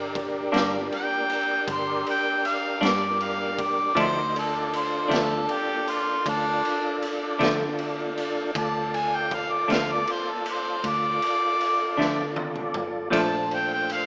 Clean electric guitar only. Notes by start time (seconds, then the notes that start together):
0.52 G2 G3 A#3 D4
2.81 G2 G3 A#3 D4
3.95 D3 F3 A3 D4
5.08 D3 F3 A3 D4
7.39 D3 F3 A3 D4
9.68 D3 F3 A3 D4
11.97 D3 F3 A3 D4
13.10 A#2 F3 A3 D4